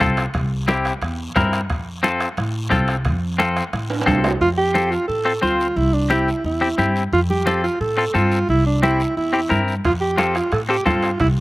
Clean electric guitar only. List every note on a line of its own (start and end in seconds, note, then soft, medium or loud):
0.00 0.24 C4 medium
0.00 0.25 F4 medium
0.00 0.25 A4 medium
0.68 0.92 C4 medium
0.68 0.92 E4 medium
0.68 0.92 G4 medium
1.36 1.60 C4 medium
1.36 1.60 E4 medium
1.36 1.60 A#4 medium
2.03 2.27 C4 medium
2.03 2.28 F4 medium
2.03 2.28 A4 medium
2.70 2.95 C4 medium
2.70 2.95 F4 medium
2.70 2.95 A4 medium
3.38 3.63 C4 medium
3.38 3.63 F4 medium
3.38 3.63 A4 medium
4.06 4.31 C4 medium
4.06 4.31 F4 medium
4.06 4.31 A4 medium
4.74 4.93 C4 medium
4.74 4.93 F4 medium
4.74 4.93 A4 medium
5.25 5.32 C4 medium
5.25 5.32 F4 soft
5.25 5.32 A4 medium
5.42 5.66 C4 medium
5.42 5.66 F4 medium
5.42 5.67 C5 medium
6.10 6.28 C4 medium
6.10 6.29 E4 soft
6.10 6.29 G4 medium
6.61 6.68 C4 medium
6.61 6.68 E4 soft
6.61 6.68 G4 medium
6.78 7.02 C4 medium
6.78 7.03 E4 soft
6.78 7.03 G4 medium
7.46 7.64 C4 medium
7.46 7.65 F4 medium
7.46 7.65 A4 medium
7.97 8.04 C4 soft
7.97 8.04 F4 soft
7.97 8.04 A4 medium
8.14 8.38 C4 medium
8.14 8.38 F4 soft
8.14 8.38 A4 medium
8.83 9.01 C4 medium
8.83 9.01 E4 soft
8.83 9.01 G4 medium
9.33 9.39 C4 medium
9.33 9.39 E4 soft
9.33 9.40 G4 medium
9.49 9.74 C4 medium
9.49 9.74 E4 medium
9.49 9.74 A#4 medium
10.18 10.36 C4 medium
10.18 10.36 F4 medium
10.18 10.36 A4 medium
10.69 10.75 C4 medium
10.69 10.75 F4 soft
10.69 10.76 A4 medium
10.86 11.10 C4 medium
10.86 11.10 F4 medium
10.86 11.10 A4 medium